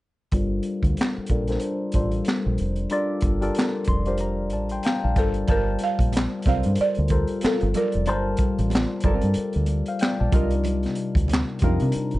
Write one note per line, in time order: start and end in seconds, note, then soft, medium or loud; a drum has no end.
0.32 0.59 G1 medium
0.32 1.08 G3 medium
0.32 1.08 D4 medium
0.32 1.08 F4 medium
0.32 1.08 A4 medium
0.32 1.08 A#4 medium
0.32 1.09 C5 medium
0.32 kick medium
0.32 closed hi-hat medium
0.63 closed hi-hat medium
0.83 0.94 D2 medium
0.83 kick medium
0.83 closed hi-hat soft
0.97 snare loud
0.97 closed hi-hat medium
1.02 clap medium
1.18 muted fingered electric bass stroke soft
1.26 1.44 G3 medium
1.26 1.44 D4 medium
1.26 kick medium
1.26 closed hi-hat medium
1.30 1.56 A#1 medium
1.30 1.44 F4 medium
1.30 1.44 A4 medium
1.30 1.44 A#4 medium
1.30 1.44 D5 medium
1.48 1.84 G3 medium
1.48 1.84 D4 medium
1.48 1.85 F4 medium
1.48 1.85 A4 medium
1.48 1.85 A#4 medium
1.48 1.85 C5 medium
1.48 snare soft
1.48 closed hi-hat soft
1.60 closed hi-hat medium
1.92 2.21 A1 medium
1.92 2.69 G3 medium
1.92 2.69 D4 medium
1.92 2.69 F4 medium
1.92 2.70 A4 medium
1.92 2.70 A#4 medium
1.92 2.70 C5 medium
1.92 kick medium
1.92 closed hi-hat medium
2.11 closed hi-hat soft
2.25 snare medium
2.25 closed hi-hat medium
2.29 clap medium
2.46 2.57 A#1 medium
2.58 2.85 F1 medium
2.58 closed hi-hat medium
2.76 closed hi-hat soft
2.90 3.28 G3 medium
2.90 3.28 D4 medium
2.90 3.28 F4 medium
2.90 3.29 A4 medium
2.90 3.29 A#4 medium
2.90 3.29 D5 loud
2.90 closed hi-hat medium
3.21 3.49 G1 medium
3.21 kick medium
3.21 closed hi-hat medium
3.41 3.88 G3 medium
3.41 3.88 D4 medium
3.41 3.88 F4 medium
3.41 3.89 A4 medium
3.41 3.89 A#4 medium
3.41 3.89 D5 medium
3.41 closed hi-hat soft
3.55 snare loud
3.55 closed hi-hat medium
3.60 clap medium
3.84 4.53 F1 medium
3.84 4.18 C6 medium
3.84 kick medium
3.84 closed hi-hat medium
4.06 5.04 G3 medium
4.06 5.04 D4 medium
4.06 5.04 F4 medium
4.06 5.05 G4 medium
4.06 5.05 A#4 medium
4.06 5.05 C5 medium
4.06 closed hi-hat soft
4.18 4.50 A#5 medium
4.18 closed hi-hat medium
4.50 4.79 A1 medium
4.50 4.70 D5 soft
4.50 4.70 A5 medium
4.50 closed hi-hat medium
4.69 4.84 G5 medium
4.69 4.84 C6 medium
4.69 closed hi-hat soft
4.83 5.03 F5 medium
4.83 5.02 G5 medium
4.83 5.02 A#5 medium
4.83 snare medium
4.83 closed hi-hat medium
4.87 clap medium
5.04 5.17 A#1 medium
5.04 5.16 D5 soft
5.04 5.16 F5 medium
5.04 5.34 A5 soft
5.16 5.43 G1 medium
5.16 5.43 G3 medium
5.16 5.43 D4 medium
5.16 5.43 F4 medium
5.16 5.44 A4 medium
5.16 5.48 A4 medium
5.16 5.44 A#4 medium
5.16 5.44 C5 medium
5.16 5.47 D5 medium
5.16 kick medium
5.16 closed hi-hat medium
5.34 closed hi-hat soft
5.48 5.75 G1 loud
5.48 6.24 G3 loud
5.48 6.24 F4 medium
5.48 6.24 A#4 medium
5.48 5.65 A#4 medium
5.48 6.25 C5 loud
5.48 6.24 A5 medium
5.48 kick loud
5.48 closed hi-hat medium
5.48 muted conga soft
5.48 low conga medium
5.79 closed hi-hat medium
5.79 muted conga soft
5.84 6.47 F5 medium
5.99 6.26 A#1 medium
5.99 kick medium
5.99 closed hi-hat soft
6.13 muted nylon-string guitar stroke soft
6.13 closed hi-hat medium
6.13 muted conga soft
6.13 high conga medium
6.17 snare loud
6.17 clap loud
6.42 6.97 G3 medium
6.42 6.97 F4 medium
6.42 kick medium
6.42 closed hi-hat medium
6.46 6.61 C2 medium
6.46 6.69 C4 medium
6.46 6.70 F4 medium
6.46 6.97 A4 medium
6.46 6.98 A#4 medium
6.46 6.70 A#4 medium
6.46 6.98 C5 medium
6.46 6.80 F5 medium
6.46 muted conga soft
6.46 high conga medium
6.46 low conga medium
6.63 6.76 G2 loud
6.63 closed hi-hat medium
6.75 closed hi-hat medium
6.75 muted conga soft
6.80 7.46 D5 medium
6.80 muted fingered electric bass stroke soft
6.95 7.24 D2 medium
6.95 closed hi-hat soft
7.08 7.62 G3 medium
7.08 7.62 F4 medium
7.08 7.62 A4 medium
7.08 7.62 A#4 medium
7.08 kick medium
7.08 closed hi-hat medium
7.08 muted conga soft
7.08 high conga medium
7.12 7.63 C5 medium
7.27 closed hi-hat soft
7.41 7.66 C4 medium
7.41 7.66 F4 medium
7.41 7.77 A4 medium
7.41 7.67 A#4 medium
7.41 muted fingered electric bass stroke soft
7.41 snare loud
7.41 closed hi-hat medium
7.45 clap medium
7.61 7.73 G1 medium
7.61 closed hi-hat soft
7.74 8.00 G3 medium
7.74 8.01 F4 medium
7.74 8.01 A4 medium
7.74 8.01 A#4 medium
7.74 8.36 A#4 medium
7.74 8.01 D5 medium
7.74 closed hi-hat medium
7.74 muted conga soft
7.74 high conga medium
7.74 low conga medium
7.92 8.08 F1 medium
7.92 closed hi-hat soft
8.06 8.34 G1 loud
8.06 8.82 G3 loud
8.06 8.82 F4 loud
8.06 8.83 A#4 medium
8.06 8.83 C5 loud
8.06 8.82 A5 medium
8.06 closed hi-hat medium
8.06 low conga soft
8.37 kick medium
8.37 closed hi-hat medium
8.37 muted conga soft
8.59 8.85 A1 medium
8.59 closed hi-hat soft
8.70 muted nylon-string guitar stroke soft
8.70 closed hi-hat medium
8.70 muted conga soft
8.70 high conga medium
8.75 snare loud
8.75 clap loud
9.00 9.55 G3 medium
9.00 9.27 C4 medium
9.00 9.55 F4 medium
9.00 kick loud
9.00 closed hi-hat medium
9.05 9.19 G1 medium
9.05 9.27 F4 medium
9.05 9.56 A4 medium
9.05 9.56 A#4 medium
9.05 9.28 A#4 medium
9.05 9.56 D5 medium
9.05 high conga medium
9.05 low conga medium
9.21 9.34 G2 medium
9.21 closed hi-hat soft
9.34 muted fingered electric bass stroke soft
9.34 closed hi-hat medium
9.34 muted conga soft
9.53 9.81 D2 medium
9.53 closed hi-hat soft
9.66 closed hi-hat medium
9.66 high conga soft
9.86 10.01 C5 medium
9.86 10.00 F5 medium
9.86 closed hi-hat soft
9.99 10.19 D5 medium
9.99 10.18 G5 medium
9.99 snare medium
9.99 closed hi-hat medium
10.03 clap medium
10.20 10.31 A#1 medium
10.20 10.50 D5 soft
10.20 10.50 A5 medium
10.32 10.85 C2 medium
10.32 11.37 C3 medium
10.32 11.37 G3 medium
10.32 11.37 D4 medium
10.32 10.52 D#4 medium
10.32 11.37 D#4 medium
10.32 11.37 F4 medium
10.32 10.53 F4 medium
10.32 11.38 A#4 medium
10.32 10.53 A#4 medium
10.32 kick loud
10.32 closed hi-hat medium
10.32 high conga medium
10.32 low conga medium
10.51 closed hi-hat soft
10.64 closed hi-hat medium
10.64 muted conga soft
10.64 low conga medium
10.83 snare soft
10.83 closed hi-hat soft
10.95 closed hi-hat medium
11.15 11.42 D2 medium
11.15 kick medium
11.15 closed hi-hat soft
11.28 muted nylon-string guitar stroke soft
11.28 closed hi-hat medium
11.28 muted conga soft
11.28 high conga medium
11.33 snare loud
11.33 clap loud
11.59 11.77 F2 medium
11.59 12.13 C3 medium
11.59 12.13 G3 medium
11.59 12.14 D4 medium
11.59 11.85 D#4 medium
11.59 kick loud
11.59 closed hi-hat medium
11.59 muted conga soft
11.59 high conga medium
11.59 low conga medium
11.63 12.14 D#4 medium
11.63 12.14 F4 medium
11.63 11.86 F4 medium
11.63 12.14 A#4 medium
11.63 11.86 A#4 medium
11.80 11.92 C3 loud
11.80 closed hi-hat soft
11.92 muted fingered electric bass stroke soft
11.92 closed hi-hat medium
12.11 12.19 G1 medium
12.11 closed hi-hat soft